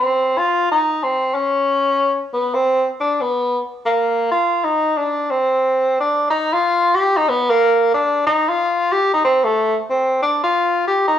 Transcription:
0, 0, Header, 1, 2, 480
1, 0, Start_track
1, 0, Tempo, 327154
1, 563, Time_signature, 3, 2, 24, 8
1, 16416, End_track
2, 0, Start_track
2, 0, Title_t, "Tenor saxophone"
2, 0, Program_c, 0, 66
2, 0, Note_on_c, 0, 60, 77
2, 557, Note_on_c, 0, 65, 97
2, 579, Note_off_c, 0, 60, 0
2, 1036, Note_off_c, 0, 65, 0
2, 1044, Note_on_c, 0, 63, 85
2, 1515, Note_on_c, 0, 60, 77
2, 1537, Note_off_c, 0, 63, 0
2, 1969, Note_on_c, 0, 61, 83
2, 1991, Note_off_c, 0, 60, 0
2, 3250, Note_off_c, 0, 61, 0
2, 3421, Note_on_c, 0, 59, 77
2, 3729, Note_on_c, 0, 60, 84
2, 3751, Note_off_c, 0, 59, 0
2, 4220, Note_off_c, 0, 60, 0
2, 4408, Note_on_c, 0, 62, 74
2, 4711, Note_on_c, 0, 59, 83
2, 4733, Note_off_c, 0, 62, 0
2, 5255, Note_off_c, 0, 59, 0
2, 5656, Note_on_c, 0, 58, 67
2, 6279, Note_off_c, 0, 58, 0
2, 6329, Note_on_c, 0, 65, 89
2, 6812, Note_on_c, 0, 63, 78
2, 6834, Note_off_c, 0, 65, 0
2, 7289, Note_on_c, 0, 62, 72
2, 7311, Note_off_c, 0, 63, 0
2, 7786, Note_on_c, 0, 60, 73
2, 7808, Note_off_c, 0, 62, 0
2, 8741, Note_off_c, 0, 60, 0
2, 8805, Note_on_c, 0, 62, 78
2, 9219, Note_off_c, 0, 62, 0
2, 9247, Note_on_c, 0, 63, 95
2, 9579, Note_on_c, 0, 65, 97
2, 9601, Note_off_c, 0, 63, 0
2, 10196, Note_on_c, 0, 67, 86
2, 10218, Note_off_c, 0, 65, 0
2, 10517, Note_on_c, 0, 63, 94
2, 10539, Note_off_c, 0, 67, 0
2, 10691, Note_on_c, 0, 59, 96
2, 10713, Note_off_c, 0, 63, 0
2, 11001, Note_on_c, 0, 58, 94
2, 11023, Note_off_c, 0, 59, 0
2, 11637, Note_off_c, 0, 58, 0
2, 11646, Note_on_c, 0, 62, 87
2, 12077, Note_off_c, 0, 62, 0
2, 12125, Note_on_c, 0, 63, 101
2, 12447, Note_on_c, 0, 65, 89
2, 12469, Note_off_c, 0, 63, 0
2, 13088, Note_on_c, 0, 67, 89
2, 13110, Note_off_c, 0, 65, 0
2, 13369, Note_off_c, 0, 67, 0
2, 13402, Note_on_c, 0, 63, 89
2, 13546, Note_off_c, 0, 63, 0
2, 13561, Note_on_c, 0, 60, 85
2, 13851, Note_on_c, 0, 57, 91
2, 13873, Note_off_c, 0, 60, 0
2, 14326, Note_off_c, 0, 57, 0
2, 14521, Note_on_c, 0, 60, 78
2, 14952, Note_off_c, 0, 60, 0
2, 14997, Note_on_c, 0, 62, 89
2, 15262, Note_off_c, 0, 62, 0
2, 15309, Note_on_c, 0, 65, 92
2, 15903, Note_off_c, 0, 65, 0
2, 15951, Note_on_c, 0, 67, 83
2, 16219, Note_off_c, 0, 67, 0
2, 16246, Note_on_c, 0, 63, 86
2, 16416, Note_off_c, 0, 63, 0
2, 16416, End_track
0, 0, End_of_file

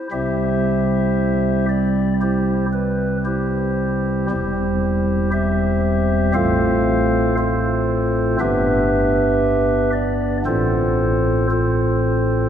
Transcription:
0, 0, Header, 1, 2, 480
1, 0, Start_track
1, 0, Key_signature, 0, "major"
1, 0, Tempo, 1047120
1, 52, Time_signature, 4, 2, 24, 8
1, 1971, Tempo, 1027397
1, 4851, Tempo, 1061947
1, 5767, End_track
2, 0, Start_track
2, 0, Title_t, "Pipe organ"
2, 0, Program_c, 0, 19
2, 51, Note_on_c, 0, 36, 61
2, 51, Note_on_c, 0, 48, 59
2, 52, Note_on_c, 0, 60, 53
2, 52, Note_on_c, 0, 76, 106
2, 53, Note_on_c, 0, 55, 53
2, 53, Note_on_c, 0, 64, 52
2, 53, Note_on_c, 0, 72, 79
2, 54, Note_on_c, 0, 67, 79
2, 759, Note_off_c, 0, 76, 0
2, 760, Note_off_c, 0, 67, 0
2, 760, Note_off_c, 0, 72, 0
2, 777, Note_on_c, 0, 74, 104
2, 981, Note_off_c, 0, 74, 0
2, 1006, Note_off_c, 0, 64, 0
2, 1014, Note_on_c, 0, 67, 72
2, 1014, Note_on_c, 0, 72, 98
2, 1015, Note_on_c, 0, 64, 73
2, 1217, Note_off_c, 0, 67, 0
2, 1217, Note_off_c, 0, 72, 0
2, 1218, Note_off_c, 0, 64, 0
2, 1252, Note_on_c, 0, 71, 94
2, 1456, Note_off_c, 0, 71, 0
2, 1488, Note_on_c, 0, 72, 92
2, 1490, Note_on_c, 0, 64, 67
2, 1490, Note_on_c, 0, 67, 72
2, 1952, Note_off_c, 0, 36, 0
2, 1952, Note_off_c, 0, 48, 0
2, 1952, Note_off_c, 0, 55, 0
2, 1952, Note_off_c, 0, 60, 0
2, 1954, Note_off_c, 0, 72, 0
2, 1955, Note_off_c, 0, 64, 0
2, 1955, Note_off_c, 0, 67, 0
2, 1969, Note_on_c, 0, 28, 64
2, 1969, Note_on_c, 0, 60, 54
2, 1970, Note_on_c, 0, 40, 66
2, 1970, Note_on_c, 0, 55, 53
2, 1971, Note_on_c, 0, 64, 77
2, 1972, Note_on_c, 0, 67, 81
2, 1972, Note_on_c, 0, 72, 99
2, 2438, Note_off_c, 0, 64, 0
2, 2438, Note_off_c, 0, 67, 0
2, 2438, Note_off_c, 0, 72, 0
2, 2447, Note_on_c, 0, 67, 87
2, 2448, Note_on_c, 0, 76, 109
2, 2449, Note_on_c, 0, 72, 80
2, 2910, Note_off_c, 0, 28, 0
2, 2910, Note_off_c, 0, 60, 0
2, 2911, Note_off_c, 0, 40, 0
2, 2911, Note_off_c, 0, 55, 0
2, 2913, Note_off_c, 0, 67, 0
2, 2914, Note_off_c, 0, 72, 0
2, 2914, Note_off_c, 0, 76, 0
2, 2923, Note_on_c, 0, 45, 76
2, 2924, Note_on_c, 0, 33, 76
2, 2925, Note_on_c, 0, 57, 60
2, 2925, Note_on_c, 0, 60, 59
2, 2925, Note_on_c, 0, 65, 60
2, 2925, Note_on_c, 0, 69, 95
2, 2926, Note_on_c, 0, 72, 94
2, 2926, Note_on_c, 0, 77, 127
2, 3397, Note_off_c, 0, 69, 0
2, 3397, Note_off_c, 0, 72, 0
2, 3397, Note_off_c, 0, 77, 0
2, 3401, Note_off_c, 0, 65, 0
2, 3409, Note_on_c, 0, 72, 106
2, 3410, Note_on_c, 0, 69, 87
2, 3411, Note_on_c, 0, 65, 84
2, 3866, Note_off_c, 0, 45, 0
2, 3867, Note_off_c, 0, 33, 0
2, 3867, Note_off_c, 0, 57, 0
2, 3867, Note_off_c, 0, 60, 0
2, 3872, Note_off_c, 0, 69, 0
2, 3872, Note_off_c, 0, 72, 0
2, 3873, Note_off_c, 0, 65, 0
2, 3886, Note_on_c, 0, 59, 63
2, 3886, Note_on_c, 0, 76, 127
2, 3887, Note_on_c, 0, 31, 76
2, 3887, Note_on_c, 0, 43, 74
2, 3887, Note_on_c, 0, 62, 65
2, 3888, Note_on_c, 0, 71, 107
2, 3889, Note_on_c, 0, 67, 106
2, 4587, Note_off_c, 0, 76, 0
2, 4588, Note_off_c, 0, 71, 0
2, 4589, Note_off_c, 0, 67, 0
2, 4601, Note_on_c, 0, 74, 104
2, 4809, Note_off_c, 0, 74, 0
2, 4829, Note_off_c, 0, 31, 0
2, 4829, Note_off_c, 0, 43, 0
2, 4829, Note_off_c, 0, 59, 0
2, 4829, Note_off_c, 0, 62, 0
2, 4847, Note_on_c, 0, 45, 74
2, 4848, Note_on_c, 0, 33, 77
2, 4848, Note_on_c, 0, 60, 64
2, 4848, Note_on_c, 0, 72, 117
2, 4849, Note_on_c, 0, 69, 89
2, 4850, Note_on_c, 0, 65, 91
2, 5306, Note_off_c, 0, 69, 0
2, 5306, Note_off_c, 0, 72, 0
2, 5307, Note_off_c, 0, 65, 0
2, 5320, Note_on_c, 0, 65, 81
2, 5321, Note_on_c, 0, 72, 105
2, 5323, Note_on_c, 0, 69, 78
2, 5767, Note_off_c, 0, 33, 0
2, 5767, Note_off_c, 0, 45, 0
2, 5767, Note_off_c, 0, 60, 0
2, 5767, Note_off_c, 0, 65, 0
2, 5767, Note_off_c, 0, 69, 0
2, 5767, Note_off_c, 0, 72, 0
2, 5767, End_track
0, 0, End_of_file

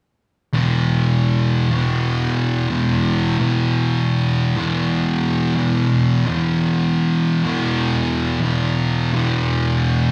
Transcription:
0, 0, Header, 1, 2, 480
1, 0, Start_track
1, 0, Tempo, 716846
1, 365, Time_signature, 4, 2, 24, 8
1, 6774, End_track
2, 0, Start_track
2, 0, Title_t, "Distorted electric guitar"
2, 0, Program_c, 0, 30
2, 356, Note_on_c, 0, 40, 88
2, 372, Note_on_c, 0, 47, 85
2, 382, Note_on_c, 0, 52, 110
2, 1134, Note_off_c, 0, 47, 0
2, 1137, Note_off_c, 0, 52, 0
2, 1140, Note_on_c, 0, 52, 79
2, 1151, Note_on_c, 0, 47, 81
2, 1159, Note_off_c, 0, 40, 0
2, 1161, Note_on_c, 0, 40, 75
2, 1795, Note_off_c, 0, 40, 0
2, 1796, Note_off_c, 0, 47, 0
2, 1798, Note_on_c, 0, 40, 76
2, 1806, Note_on_c, 0, 47, 80
2, 1813, Note_off_c, 0, 52, 0
2, 1816, Note_on_c, 0, 52, 80
2, 2269, Note_off_c, 0, 40, 0
2, 2272, Note_on_c, 0, 40, 86
2, 2273, Note_off_c, 0, 47, 0
2, 2281, Note_on_c, 0, 47, 102
2, 2290, Note_off_c, 0, 52, 0
2, 2293, Note_on_c, 0, 52, 100
2, 3048, Note_off_c, 0, 47, 0
2, 3054, Note_off_c, 0, 52, 0
2, 3057, Note_on_c, 0, 52, 87
2, 3068, Note_on_c, 0, 47, 74
2, 3076, Note_off_c, 0, 40, 0
2, 3078, Note_on_c, 0, 40, 70
2, 3711, Note_off_c, 0, 40, 0
2, 3714, Note_off_c, 0, 47, 0
2, 3714, Note_on_c, 0, 40, 75
2, 3727, Note_on_c, 0, 47, 75
2, 3734, Note_off_c, 0, 52, 0
2, 3736, Note_on_c, 0, 52, 80
2, 4189, Note_off_c, 0, 40, 0
2, 4192, Note_on_c, 0, 40, 96
2, 4194, Note_off_c, 0, 47, 0
2, 4202, Note_on_c, 0, 47, 97
2, 4214, Note_off_c, 0, 52, 0
2, 4216, Note_on_c, 0, 52, 103
2, 4969, Note_off_c, 0, 47, 0
2, 4976, Note_off_c, 0, 52, 0
2, 4978, Note_on_c, 0, 52, 87
2, 4988, Note_on_c, 0, 47, 82
2, 4998, Note_off_c, 0, 40, 0
2, 5001, Note_on_c, 0, 40, 76
2, 5628, Note_off_c, 0, 40, 0
2, 5631, Note_on_c, 0, 40, 69
2, 5634, Note_off_c, 0, 47, 0
2, 5644, Note_on_c, 0, 47, 78
2, 5654, Note_off_c, 0, 52, 0
2, 5657, Note_on_c, 0, 52, 82
2, 6109, Note_off_c, 0, 40, 0
2, 6112, Note_on_c, 0, 40, 94
2, 6114, Note_off_c, 0, 47, 0
2, 6124, Note_on_c, 0, 47, 97
2, 6132, Note_off_c, 0, 52, 0
2, 6134, Note_on_c, 0, 52, 93
2, 6774, Note_off_c, 0, 40, 0
2, 6774, Note_off_c, 0, 47, 0
2, 6774, Note_off_c, 0, 52, 0
2, 6774, End_track
0, 0, End_of_file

